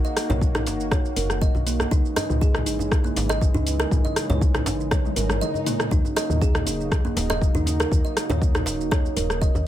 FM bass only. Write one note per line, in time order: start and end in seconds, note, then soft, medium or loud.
0.30 0.68 B1 medium
0.66 0.93 F#1 medium
0.92 1.09 B1 medium
1.16 1.48 F#1 medium
1.55 1.86 B1 medium
1.92 2.01 C#2 loud
2.30 2.68 C#2 medium
2.66 2.93 G#1 medium
2.92 3.09 C#2 medium
3.17 3.48 G#1 medium
3.55 3.86 C#2 medium
3.92 4.01 C#2 loud
4.30 4.68 C#2 medium
4.66 4.93 G#1 medium
4.91 5.09 C#2 medium
5.17 5.42 G#1 medium
5.91 6.01 D#2 loud
6.30 6.68 D#2 medium
6.66 6.93 D#1 medium
6.92 7.09 D#2 medium
7.16 7.48 D#1 loud
7.55 7.86 D#2 medium
7.92 8.01 D#2 loud
8.30 8.68 D#2 medium
8.66 8.93 D#1 medium
8.92 9.09 D#2 medium
9.17 9.48 D#1 medium
9.55 9.67 D#2 medium